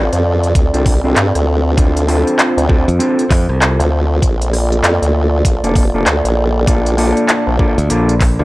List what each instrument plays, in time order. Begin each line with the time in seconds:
Already playing: analog synth pad C4 F4 A4 D5
0.13 wobble bass F2, closed hi-hat
0.43 closed hi-hat
0.55 wobble bass D2, kick, closed hi-hat
0.74 wobble bass C2, clean electric guitar C4 D4 F4 A4, closed hi-hat
0.86 kick, open hi-hat
1.04 wobble bass C2, clean electric guitar C4 D4 F4 A4
1.16 wobble bass G2, clap, closed hi-hat
1.35 wobble bass D2, cross-stick, closed hi-hat
1.77 clean electric guitar C4 D4 F4 A4, analog synth pad C5, kick, closed hi-hat
1.97 closed hi-hat
2.08 clean electric guitar C4 D4 F4 A4, cross-stick, open hi-hat
2.27 closed hi-hat
2.39 clap, closed hi-hat
2.57 wobble bass D2, closed hi-hat
2.68 clean electric guitar C4 D4 F4 A4, kick
2.88 fingered electric bass F2, closed hi-hat
2.99 clean electric guitar C4 D4 F4 A4, closed hi-hat
3.19 closed hi-hat
3.30 fingered electric bass F2, kick, clap, open hi-hat
3.49 fingered electric bass C2, cross-stick
3.62 clap, closed hi-hat
3.80 wobble bass D2, cross-stick, closed hi-hat
4.22 wobble bass A#1, analog synth pad A#3 A4 D5, kick, closed hi-hat
4.42 closed hi-hat
4.53 cross-stick, open hi-hat
4.72 closed hi-hat
4.83 wobble bass F2, clap, closed hi-hat
5.02 wobble bass D2, closed hi-hat
5.45 wobble bass A#1, kick, closed hi-hat
5.63 wobble bass F1, clean electric guitar A#3 D4 F4 A4, closed hi-hat
5.75 kick, open hi-hat
5.94 wobble bass F1, clean electric guitar A#3 D4 F4 A4
6.06 wobble bass D2, clap, closed hi-hat
6.24 wobble bass A#1, closed hi-hat
6.67 clean electric guitar A#3 D4 F4 A4, kick, closed hi-hat
6.86 closed hi-hat
6.98 clean electric guitar A#3 D4 F4 A4, cross-stick, open hi-hat
7.17 closed hi-hat
7.29 clap, closed hi-hat
7.47 wobble bass A#1
7.59 clean electric guitar A#3 D4 F4 A4, kick
7.78 fingered electric bass D2, closed hi-hat
7.90 fingered electric bass A#1, clean electric guitar A#3 D4 F4 A4, closed hi-hat
8.09 closed hi-hat
8.20 kick, clap, open hi-hat
8.39 fingered electric bass D2, clean electric guitar A#3 D4 F4 A4, cross-stick